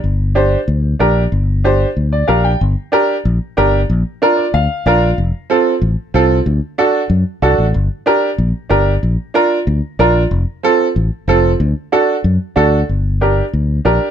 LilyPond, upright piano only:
\new Staff \with { instrumentName = "Upright piano" } { \time 4/4 \key g \minor \tempo 4 = 187 << { r1 | r2 r8 d''8 f''8 g''8 | r1 | r4. d''8 f''4 f''4 |
r1 | r1 | r1 | r1 |
r1 | r1 | r1 | } \\ { r4 <d' g' c''>8 r4. <d' g' bes'>8 r8 | r4 <d' g' c''>8 r4. <d' g' bes'>8 r8 | r4 <d' g' bes'>8 r4. <d' g' bes'>8 r8 | r4 <d' f' bes'>8 r4. <d' f' bes'>8 r8 |
r4 <c' f' a'>8 r4. <c' f' a'>8 r8 | r4 <d' fis' a'>8 r4. <d' fis' a'>8 r8 | r4 <d' g' bes'>8 r4. <d' g' bes'>8 r8 | r4 <d' f' bes'>8 r4. <d' f' bes'>8 r8 |
r4 <c' f' a'>8 r4. <c' f' a'>8 r8 | r4 <d' fis' a'>8 r4. <d' fis' a'>8 r8 | r4 <d' g' bes'>8 r4. <d' g' bes'>8 r8 | } >> }